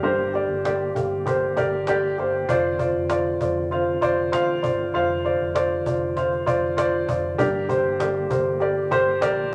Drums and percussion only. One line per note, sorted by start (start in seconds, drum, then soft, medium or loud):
0.04 cajon slap soft
0.34 cajon slap soft
0.65 cajon slap medium
0.96 cajon bass medium
1.26 cajon bass medium
1.26 cajon slap soft
1.57 cajon bass medium
1.87 cajon slap medium
2.18 cajon slap soft
2.49 cajon bass medium
2.79 cajon bass medium
3.10 cajon slap medium
3.41 cajon bass medium
3.71 cajon slap medium
4.02 cajon bass medium
4.33 cajon slap medium
4.64 cajon bass medium
4.94 cajon slap soft
5.25 cajon slap soft
5.56 cajon slap medium
5.86 cajon bass medium
6.17 cajon bass medium
6.17 cajon slap soft
6.32 cajon slap soft
6.47 cajon bass medium
6.78 cajon slap loud
7.09 cajon bass medium
7.39 cajon bass loud
7.70 cajon bass medium
8.00 cajon slap medium
8.31 cajon bass medium
8.60 cajon slap medium
8.91 cajon bass medium
9.22 cajon slap loud